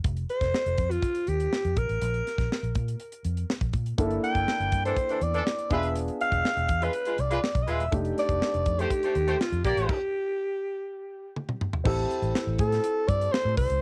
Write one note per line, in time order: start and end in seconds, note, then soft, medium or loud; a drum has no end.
0.04 0.23 F1 medium
0.04 kick loud
0.04 closed hi-hat medium
0.17 closed hi-hat soft
0.29 0.92 C5 loud
0.29 closed hi-hat soft
0.41 0.51 F1 medium
0.41 kick medium
0.41 snare soft
0.41 closed hi-hat soft
0.54 snare loud
0.66 0.76 F1 medium
0.66 closed hi-hat soft
0.78 0.97 F2 medium
0.78 kick medium
0.78 closed hi-hat medium
0.91 1.30 F4 medium
0.91 closed hi-hat medium
1.02 kick medium
1.02 closed hi-hat medium
1.15 closed hi-hat soft
1.27 1.47 D#2 medium
1.27 1.79 G4 medium
1.27 closed hi-hat medium
1.40 closed hi-hat soft
1.53 snare medium
1.65 1.74 F2 medium
1.65 closed hi-hat soft
1.76 1.86 A#1 medium
1.76 2.76 A#4 medium
1.76 kick medium
1.76 closed hi-hat medium
1.89 1.99 A1 medium
1.89 closed hi-hat soft
2.02 2.20 A#1 loud
2.02 closed hi-hat medium
2.14 closed hi-hat soft
2.27 snare soft
2.27 closed hi-hat soft
2.38 2.48 A#1 medium
2.38 kick medium
2.38 snare soft
2.38 closed hi-hat soft
2.52 snare medium
2.63 2.72 A#1 medium
2.63 closed hi-hat soft
2.75 2.94 A#2 medium
2.75 kick medium
2.75 closed hi-hat medium
2.88 closed hi-hat soft
3.00 closed hi-hat medium
3.12 closed hi-hat medium
3.25 3.43 F2 medium
3.25 closed hi-hat medium
3.37 closed hi-hat soft
3.50 snare loud
3.61 3.71 A#1 medium
3.61 kick medium
3.61 closed hi-hat soft
3.73 3.92 A#2 medium
3.73 kick medium
3.73 closed hi-hat medium
3.86 closed hi-hat soft
3.98 4.17 G1 medium
3.98 5.67 A#3 medium
3.98 5.67 D4 medium
3.98 5.68 E4 medium
3.98 5.68 A4 medium
3.98 kick loud
3.98 closed hi-hat medium
4.11 closed hi-hat soft
4.24 4.81 G5 loud
4.24 closed hi-hat medium
4.35 4.45 G1 medium
4.35 kick medium
4.35 closed hi-hat soft
4.48 snare medium
4.60 4.69 G1 medium
4.60 closed hi-hat soft
4.72 4.91 G2 medium
4.72 kick medium
4.72 closed hi-hat medium
4.85 4.95 E3 medium
4.85 4.95 D4 medium
4.85 4.95 A4 medium
4.85 5.25 C5 medium
4.85 closed hi-hat soft
4.96 kick medium
4.96 closed hi-hat medium
5.09 5.20 E3 medium
5.09 5.20 D4 medium
5.09 5.20 A4 medium
5.09 closed hi-hat soft
5.21 5.40 E2 medium
5.21 5.74 D5 medium
5.21 closed hi-hat medium
5.34 5.42 E3 medium
5.34 5.42 D4 medium
5.34 5.42 A4 medium
5.34 closed hi-hat soft
5.47 snare loud
5.58 closed hi-hat soft
5.70 6.08 E1 medium
5.70 5.87 G#3 medium
5.70 7.63 B3 medium
5.70 7.64 D4 medium
5.70 7.64 F4 medium
5.70 5.87 F4 medium
5.70 7.64 G#4 medium
5.70 5.87 B4 medium
5.70 5.96 E5 medium
5.70 kick medium
5.70 closed hi-hat medium
5.83 closed hi-hat soft
5.95 closed hi-hat medium
6.08 closed hi-hat soft
6.21 6.85 F5 loud
6.21 closed hi-hat medium
6.32 6.41 E1 medium
6.32 kick medium
6.32 closed hi-hat soft
6.45 snare medium
6.57 6.66 E1 medium
6.57 closed hi-hat soft
6.69 6.88 E2 medium
6.69 kick medium
6.69 closed hi-hat medium
6.82 6.92 G#3 medium
6.82 6.92 F4 medium
6.82 6.92 B4 medium
6.82 7.22 B4 medium
6.82 closed hi-hat soft
6.93 closed hi-hat medium
7.05 7.17 G#3 medium
7.05 7.17 F4 medium
7.05 7.17 B4 medium
7.05 closed hi-hat medium
7.18 7.37 C2 medium
7.18 7.64 D5 medium
7.18 closed hi-hat medium
7.30 7.38 G#3 medium
7.30 7.38 F4 medium
7.30 7.38 B4 medium
7.30 closed hi-hat soft
7.44 snare loud
7.55 7.64 B1 medium
7.55 kick medium
7.55 closed hi-hat soft
7.63 7.72 D#5 medium
7.67 7.80 D#1 medium
7.67 7.83 G#3 medium
7.67 7.83 F4 medium
7.67 7.83 B4 medium
7.67 7.93 E5 medium
7.67 closed hi-hat medium
7.80 7.89 E1 medium
7.80 closed hi-hat soft
7.91 8.11 F1 loud
7.91 9.61 A3 medium
7.91 9.61 D4 medium
7.91 9.61 D#4 medium
7.91 9.62 G4 medium
7.91 kick loud
7.91 closed hi-hat medium
8.05 closed hi-hat soft
8.18 8.82 D5 medium
8.18 snare soft
8.18 closed hi-hat medium
8.29 8.38 F1 medium
8.29 kick medium
8.29 closed hi-hat soft
8.42 snare loud
8.54 8.63 F1 medium
8.54 closed hi-hat soft
8.66 8.85 F2 medium
8.66 kick medium
8.66 closed hi-hat medium
8.79 8.89 A3 medium
8.79 8.89 G4 medium
8.79 9.42 G4 loud
8.79 8.89 C5 medium
8.79 closed hi-hat medium
8.90 kick medium
8.90 closed hi-hat medium
9.03 9.14 A3 medium
9.03 9.14 G4 medium
9.03 9.14 C5 medium
9.03 closed hi-hat medium
9.15 9.34 D#2 medium
9.15 closed hi-hat medium
9.27 9.35 A3 medium
9.27 9.35 G4 medium
9.27 9.35 C5 medium
9.27 closed hi-hat soft
9.41 9.64 F4 medium
9.41 snare loud
9.52 9.62 F2 medium
9.52 closed hi-hat soft
9.64 9.74 A#1 medium
9.64 9.96 A#3 medium
9.64 9.96 G4 medium
9.64 11.33 G4 medium
9.64 9.96 D5 loud
9.64 kick medium
9.64 closed hi-hat medium
9.77 9.86 A1 medium
9.77 closed hi-hat soft
9.89 kick loud
9.89 crash medium
11.36 high tom soft
11.49 mid tom medium
11.61 mid tom medium
11.73 floor tom medium
11.84 12.04 A1 loud
11.84 13.78 C4 medium
11.84 13.78 E4 medium
11.84 13.78 G4 medium
11.84 13.79 A4 medium
11.84 kick loud
11.84 crash loud
12.11 closed hi-hat medium
12.22 12.32 A1 medium
12.22 closed hi-hat soft
12.35 snare loud
12.47 12.56 A1 medium
12.59 12.78 A2 medium
12.59 13.10 A4 medium
12.59 kick medium
12.59 closed hi-hat medium
12.72 snare soft
12.72 closed hi-hat medium
12.84 closed hi-hat medium
13.08 13.27 G2 medium
13.08 13.34 D5 medium
13.08 kick medium
13.08 closed hi-hat medium
13.21 closed hi-hat soft
13.32 13.57 C5 medium
13.32 snare loud
13.45 13.55 A2 medium
13.57 13.67 C2 medium
13.57 13.82 C5 loud
13.57 kick medium
13.57 open hi-hat medium
13.70 13.79 C#2 medium
13.70 closed hi-hat medium